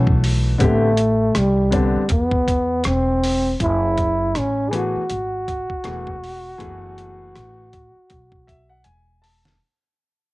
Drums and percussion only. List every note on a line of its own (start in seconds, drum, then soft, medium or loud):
0.07 kick medium
0.24 open hi-hat medium
0.60 kick loud
0.60 closed hi-hat medium
0.97 closed hi-hat medium
1.35 cross-stick medium
1.35 closed hi-hat medium
1.72 kick medium
1.72 closed hi-hat medium
2.09 kick medium
2.09 closed hi-hat medium
2.31 kick medium
2.48 kick medium
2.48 closed hi-hat medium
2.84 cross-stick medium
2.84 closed hi-hat medium
3.24 open hi-hat medium
3.60 kick medium
3.60 closed hi-hat medium
3.98 kick medium
3.98 closed hi-hat medium
4.35 cross-stick medium
4.35 closed hi-hat medium
4.73 closed hi-hat medium
5.10 closed hi-hat medium
5.48 kick medium
5.48 closed hi-hat medium
5.70 kick medium
5.84 cross-stick medium
5.84 closed hi-hat medium
6.07 kick medium
6.24 open hi-hat medium
6.60 kick medium
6.60 closed hi-hat medium
6.98 closed hi-hat medium
7.36 cross-stick loud
7.36 closed hi-hat medium
7.73 kick medium
7.73 closed hi-hat medium
8.10 kick medium
8.10 closed hi-hat medium
8.32 kick medium
8.48 kick medium
8.48 closed hi-hat medium
8.84 closed hi-hat medium
9.24 open hi-hat medium
9.45 snare medium